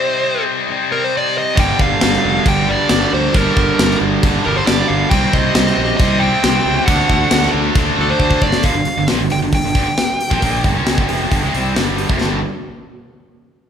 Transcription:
Already playing: distorted electric guitar C3 G3 C4, tonewheel organ C4 G4 D#5, lead electric guitar C5
0.68 distorted electric guitar C3 G3 C4
0.92 lead electric guitar A#4
1.04 lead electric guitar C5
1.17 lead electric guitar D5
1.38 lead electric guitar D#5
1.56 fingered electric bass G1, distorted electric guitar G2 D3 G3, tonewheel organ D4 A5, lead electric guitar G5, kick, crash
1.61 tonewheel organ G3
1.79 fingered electric bass G1, lead electric guitar F5, kick
2.01 fingered electric bass G1, snare, crash
2.13 snare
2.25 fingered electric bass F1
2.46 fingered electric bass G1, distorted electric guitar G2 D3 G3, lead electric guitar G5, kick, crash
2.66 distorted electric guitar G2 D3 G3, lead electric guitar D5
2.89 fingered electric bass G1, distorted electric guitar G2 D3 G3, snare, crash
3.13 fingered electric bass D2, lead electric guitar C5
3.33 fingered electric bass G1, distorted electric guitar G2 D3 G3, lead electric guitar A#4, kick, crash
3.57 fingered electric bass G1, kick
3.79 fingered electric bass G1, snare, crash
3.91 snare
4.01 fingered electric bass G1
4.23 fingered electric bass G1, distorted electric guitar G2 D3 G3, kick, crash
4.44 fingered electric bass G1, distorted electric guitar G2 D3 G3, lead electric guitar A#4
4.56 lead electric guitar C5
4.66 fingered electric bass G1, distorted electric guitar G2 D3 G3, lead electric guitar D5, snare, crash
4.88 fingered electric bass G1, lead electric guitar F5
5.10 fingered electric bass C2, distorted electric guitar C3 G3 C4, tonewheel organ C4 G4 C5, lead electric guitar G5, kick, crash
5.33 fingered electric bass C2, lead electric guitar D#5, kick
5.55 fingered electric bass C2, snare, crash
5.67 snare
5.78 fingered electric bass A#1
5.97 fingered electric bass C2, distorted electric guitar C3 G3, lead electric guitar D#5, kick, crash
6.02 distorted electric guitar C4
6.19 distorted electric guitar G3 C4, lead electric guitar G5
6.24 distorted electric guitar C3
6.43 fingered electric bass C2, distorted electric guitar C3 G3 C4, snare, crash
6.65 fingered electric bass C#2
6.85 fingered electric bass D2, distorted electric guitar D3 A3 D4, tonewheel organ D4 A4, lead electric guitar F#5, kick, crash
7.10 fingered electric bass D2, kick
7.31 fingered electric bass D2, snare, crash
7.43 snare
7.54 fingered electric bass D2
7.75 fingered electric bass D2, distorted electric guitar D3 A3 D4, kick, crash
7.96 fingered electric bass D2, distorted electric guitar D3 A3 D4
8.01 lead electric guitar A4
8.10 lead electric guitar C5
8.18 fingered electric bass D2, distorted electric guitar D3 A3 D4, kick
8.31 kick
8.42 fingered electric bass F#1, lead electric guitar D5, kick
8.52 snare
8.63 fingered electric bass G1, distorted electric guitar G2 D3, lead electric guitar F5, kick, open hi-hat
8.75 fingered electric bass G1, distorted electric guitar G2 D3
8.85 muted fingered electric bass stroke, muted distorted electric guitar stroke, open hi-hat
8.97 fingered electric bass G1, distorted electric guitar G2 D3
9.08 fingered electric bass A#1, distorted electric guitar A#2 F3, snare, open hi-hat
9.20 fingered electric bass G1, distorted electric guitar G2 D3
9.30 fingered electric bass G1, distorted electric guitar G2 D3, lead electric guitar G5, open hi-hat
9.42 fingered electric bass G1, distorted electric guitar G2 D3
9.53 fingered electric bass G1, distorted electric guitar G2 D3, lead electric guitar G5, kick, open hi-hat
9.65 fingered electric bass G1, distorted electric guitar G2 D3
9.75 fingered electric bass G1, distorted electric guitar G2 D3, kick, open hi-hat
9.98 snare, open hi-hat
10.21 open hi-hat
10.30 fingered electric bass A#1, distorted electric guitar A#2 F3, kick
10.41 fingered electric bass A#1, distorted electric guitar A#2 F3 A#3, kick, open hi-hat
10.63 fingered electric bass G1, distorted electric guitar G2 D3, kick, open hi-hat
10.74 fingered electric bass C#2, distorted electric guitar C#3 G#3 C#4
10.87 snare, open hi-hat
10.96 fingered electric bass G1, distorted electric guitar G2 D3, kick
11.08 fingered electric bass F1, distorted electric guitar F2 C3 F3, open hi-hat
11.30 fingered electric bass G1, distorted electric guitar G2 D3, kick, open hi-hat
11.42 fingered electric bass C#2, distorted electric guitar C#3 G#3
11.52 fingered electric bass C2, distorted electric guitar C3 G3 C4, open hi-hat
11.74 fingered electric bass G1, distorted electric guitar G2 D3 G3, snare, open hi-hat
11.98 open hi-hat
12.08 fingered electric bass F1, distorted electric guitar F2 C3, kick
12.18 fingered electric bass G1, distorted electric guitar G2 D3 G3, snare

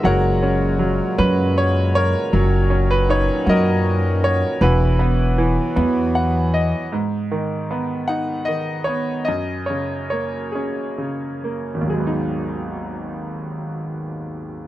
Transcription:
Already playing: harmonium G#3
0.03 upright bass F#1, harmonium A#2 C#3 F#4, grand piano F#3 A#4 C#5 F#5
0.43 grand piano C#4
0.79 grand piano F#3
1.18 upright bass F#2, grand piano C#4 B4
1.58 grand piano C#5
1.95 grand piano A#4 C#5
2.32 upright bass F#1, harmonium D#3 C#4 F#4, grand piano F#3
2.70 grand piano C#4
2.91 grand piano B4
3.09 grand piano D#4 C#5
3.46 upright bass F#2, grand piano F#4 A#4 D#5
4.24 grand piano C#5
4.61 upright bass E1, grand piano E3 E4 F#4 B4, harmonium E3 F#3 B3
4.99 grand piano B3
5.38 grand piano E3
5.76 upright bass E2, grand piano B3
6.15 grand piano F#5
6.54 grand piano D#5
6.92 grand piano G#2
7.31 grand piano D#3
7.71 grand piano B3
8.08 grand piano D#4 F#5
8.45 grand piano D#3 D#5
8.84 grand piano B3 C#5
9.25 grand piano F#2 D#5
9.66 grand piano C#3 C#5
10.10 grand piano A#3 C#5
10.52 grand piano C#4 G#4
10.98 grand piano C#3
11.44 grand piano A#3
11.74 grand piano G#1
11.81 grand piano D#2
11.87 grand piano F#3 G#4
11.94 grand piano G#3
12.00 grand piano B3
12.07 grand piano D#4

